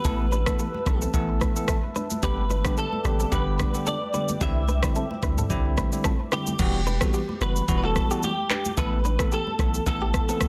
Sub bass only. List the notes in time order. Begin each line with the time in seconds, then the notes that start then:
0.05 A1
0.86 B1
1.14 A1
2.23 G1
3.05 A1
3.32 G1
4.41 C2
5.23 D2
5.50 C2
6.59 E1
7.41 F#1
7.68 E1
8.78 A1
9.59 B1
9.86 A1